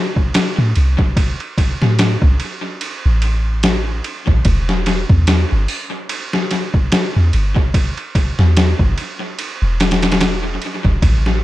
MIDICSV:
0, 0, Header, 1, 3, 480
1, 0, Start_track
1, 0, Key_signature, 1, "minor"
1, 0, Tempo, 821918
1, 680, Time_signature, 4, 2, 24, 8
1, 6680, End_track
2, 0, Start_track
2, 0, Title_t, "808-style bass"
2, 0, Program_c, 0, 38
2, 342, Note_on_c, 0, 45, 85
2, 431, Note_off_c, 0, 45, 0
2, 449, Note_on_c, 0, 36, 80
2, 564, Note_off_c, 0, 36, 0
2, 1065, Note_on_c, 0, 45, 99
2, 1268, Note_off_c, 0, 45, 0
2, 1299, Note_on_c, 0, 36, 85
2, 1389, Note_off_c, 0, 36, 0
2, 1785, Note_on_c, 0, 33, 103
2, 2345, Note_off_c, 0, 33, 0
2, 2500, Note_on_c, 0, 33, 94
2, 2590, Note_off_c, 0, 33, 0
2, 2602, Note_on_c, 0, 28, 104
2, 2951, Note_off_c, 0, 28, 0
2, 2978, Note_on_c, 0, 40, 102
2, 3184, Note_off_c, 0, 40, 0
2, 3226, Note_on_c, 0, 31, 87
2, 3313, Note_off_c, 0, 31, 0
2, 4184, Note_on_c, 0, 40, 81
2, 4272, Note_off_c, 0, 40, 0
2, 4288, Note_on_c, 0, 31, 79
2, 4403, Note_off_c, 0, 31, 0
2, 4901, Note_on_c, 0, 40, 100
2, 5106, Note_off_c, 0, 40, 0
2, 5138, Note_on_c, 0, 31, 89
2, 5229, Note_off_c, 0, 31, 0
2, 5619, Note_on_c, 0, 28, 101
2, 6182, Note_off_c, 0, 28, 0
2, 6337, Note_on_c, 0, 28, 93
2, 6428, Note_off_c, 0, 28, 0
2, 6440, Note_on_c, 0, 33, 107
2, 6680, Note_off_c, 0, 33, 0
2, 6680, End_track
3, 0, Start_track
3, 0, Title_t, "Drums"
3, 96, Note_on_c, 9, 36, 87
3, 154, Note_off_c, 9, 36, 0
3, 201, Note_on_c, 9, 51, 91
3, 204, Note_on_c, 9, 38, 117
3, 259, Note_off_c, 9, 51, 0
3, 263, Note_off_c, 9, 38, 0
3, 441, Note_on_c, 9, 51, 67
3, 499, Note_off_c, 9, 51, 0
3, 576, Note_on_c, 9, 36, 94
3, 634, Note_off_c, 9, 36, 0
3, 681, Note_on_c, 9, 36, 105
3, 682, Note_on_c, 9, 51, 83
3, 739, Note_off_c, 9, 36, 0
3, 741, Note_off_c, 9, 51, 0
3, 819, Note_on_c, 9, 51, 42
3, 877, Note_off_c, 9, 51, 0
3, 921, Note_on_c, 9, 36, 97
3, 923, Note_on_c, 9, 51, 72
3, 979, Note_off_c, 9, 36, 0
3, 981, Note_off_c, 9, 51, 0
3, 1061, Note_on_c, 9, 38, 46
3, 1119, Note_off_c, 9, 38, 0
3, 1160, Note_on_c, 9, 51, 85
3, 1164, Note_on_c, 9, 38, 112
3, 1218, Note_off_c, 9, 51, 0
3, 1222, Note_off_c, 9, 38, 0
3, 1295, Note_on_c, 9, 36, 98
3, 1354, Note_off_c, 9, 36, 0
3, 1400, Note_on_c, 9, 51, 67
3, 1458, Note_off_c, 9, 51, 0
3, 1641, Note_on_c, 9, 51, 90
3, 1699, Note_off_c, 9, 51, 0
3, 1879, Note_on_c, 9, 51, 63
3, 1938, Note_off_c, 9, 51, 0
3, 2120, Note_on_c, 9, 51, 86
3, 2124, Note_on_c, 9, 38, 115
3, 2179, Note_off_c, 9, 51, 0
3, 2182, Note_off_c, 9, 38, 0
3, 2361, Note_on_c, 9, 51, 60
3, 2420, Note_off_c, 9, 51, 0
3, 2496, Note_on_c, 9, 36, 95
3, 2555, Note_off_c, 9, 36, 0
3, 2597, Note_on_c, 9, 51, 83
3, 2600, Note_on_c, 9, 36, 111
3, 2656, Note_off_c, 9, 51, 0
3, 2659, Note_off_c, 9, 36, 0
3, 2739, Note_on_c, 9, 38, 51
3, 2797, Note_off_c, 9, 38, 0
3, 2839, Note_on_c, 9, 51, 68
3, 2842, Note_on_c, 9, 38, 56
3, 2897, Note_off_c, 9, 51, 0
3, 2901, Note_off_c, 9, 38, 0
3, 2976, Note_on_c, 9, 36, 95
3, 3034, Note_off_c, 9, 36, 0
3, 3078, Note_on_c, 9, 51, 89
3, 3082, Note_on_c, 9, 38, 113
3, 3137, Note_off_c, 9, 51, 0
3, 3140, Note_off_c, 9, 38, 0
3, 3319, Note_on_c, 9, 46, 80
3, 3378, Note_off_c, 9, 46, 0
3, 3559, Note_on_c, 9, 51, 92
3, 3617, Note_off_c, 9, 51, 0
3, 3699, Note_on_c, 9, 38, 56
3, 3757, Note_off_c, 9, 38, 0
3, 3800, Note_on_c, 9, 51, 69
3, 3803, Note_on_c, 9, 38, 47
3, 3858, Note_off_c, 9, 51, 0
3, 3862, Note_off_c, 9, 38, 0
3, 3936, Note_on_c, 9, 36, 93
3, 3994, Note_off_c, 9, 36, 0
3, 4040, Note_on_c, 9, 51, 82
3, 4043, Note_on_c, 9, 38, 114
3, 4098, Note_off_c, 9, 51, 0
3, 4102, Note_off_c, 9, 38, 0
3, 4282, Note_on_c, 9, 51, 68
3, 4340, Note_off_c, 9, 51, 0
3, 4416, Note_on_c, 9, 36, 99
3, 4474, Note_off_c, 9, 36, 0
3, 4521, Note_on_c, 9, 36, 107
3, 4522, Note_on_c, 9, 51, 86
3, 4579, Note_off_c, 9, 36, 0
3, 4580, Note_off_c, 9, 51, 0
3, 4657, Note_on_c, 9, 51, 44
3, 4716, Note_off_c, 9, 51, 0
3, 4760, Note_on_c, 9, 36, 99
3, 4761, Note_on_c, 9, 51, 72
3, 4819, Note_off_c, 9, 36, 0
3, 4820, Note_off_c, 9, 51, 0
3, 4898, Note_on_c, 9, 38, 44
3, 4957, Note_off_c, 9, 38, 0
3, 5002, Note_on_c, 9, 51, 87
3, 5006, Note_on_c, 9, 38, 117
3, 5061, Note_off_c, 9, 51, 0
3, 5064, Note_off_c, 9, 38, 0
3, 5135, Note_on_c, 9, 36, 100
3, 5194, Note_off_c, 9, 36, 0
3, 5242, Note_on_c, 9, 51, 67
3, 5300, Note_off_c, 9, 51, 0
3, 5481, Note_on_c, 9, 51, 95
3, 5540, Note_off_c, 9, 51, 0
3, 5723, Note_on_c, 9, 51, 67
3, 5727, Note_on_c, 9, 38, 94
3, 5782, Note_off_c, 9, 51, 0
3, 5785, Note_off_c, 9, 38, 0
3, 5789, Note_on_c, 9, 51, 64
3, 5793, Note_on_c, 9, 38, 85
3, 5847, Note_off_c, 9, 51, 0
3, 5851, Note_off_c, 9, 38, 0
3, 5855, Note_on_c, 9, 51, 63
3, 5858, Note_on_c, 9, 38, 89
3, 5908, Note_off_c, 9, 51, 0
3, 5908, Note_on_c, 9, 51, 64
3, 5911, Note_off_c, 9, 38, 0
3, 5911, Note_on_c, 9, 38, 84
3, 5960, Note_off_c, 9, 51, 0
3, 5960, Note_on_c, 9, 51, 91
3, 5964, Note_off_c, 9, 38, 0
3, 5964, Note_on_c, 9, 38, 116
3, 6019, Note_off_c, 9, 51, 0
3, 6022, Note_off_c, 9, 38, 0
3, 6200, Note_on_c, 9, 51, 66
3, 6258, Note_off_c, 9, 51, 0
3, 6334, Note_on_c, 9, 36, 93
3, 6393, Note_off_c, 9, 36, 0
3, 6438, Note_on_c, 9, 36, 115
3, 6438, Note_on_c, 9, 51, 83
3, 6496, Note_off_c, 9, 36, 0
3, 6497, Note_off_c, 9, 51, 0
3, 6577, Note_on_c, 9, 38, 49
3, 6635, Note_off_c, 9, 38, 0
3, 6680, End_track
0, 0, End_of_file